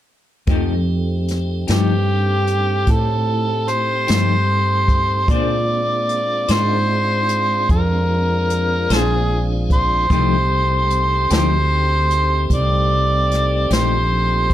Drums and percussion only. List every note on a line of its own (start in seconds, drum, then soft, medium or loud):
0.47 kick medium
0.47 closed hi-hat medium
1.28 snare soft
1.28 closed hi-hat medium
1.68 snare medium
1.68 closed hi-hat medium
2.47 closed hi-hat soft
2.87 kick medium
2.87 closed hi-hat medium
3.68 closed hi-hat soft
4.08 snare medium
4.08 closed hi-hat medium
4.88 kick medium
4.88 closed hi-hat soft
5.28 kick loud
5.28 closed hi-hat medium
6.09 closed hi-hat soft
6.48 snare loud
6.48 closed hi-hat medium
7.29 closed hi-hat medium
7.69 kick medium
7.69 closed hi-hat medium
8.50 closed hi-hat medium
8.90 snare medium
8.90 closed hi-hat medium
9.70 kick medium
9.70 closed hi-hat soft
10.10 kick loud
10.10 closed hi-hat medium
10.90 closed hi-hat medium
11.30 snare medium
11.30 closed hi-hat medium
12.10 closed hi-hat soft
12.50 kick medium
12.50 closed hi-hat medium
13.31 snare soft
13.31 closed hi-hat soft
13.70 snare medium
13.70 closed hi-hat medium
14.50 kick medium
14.50 closed hi-hat soft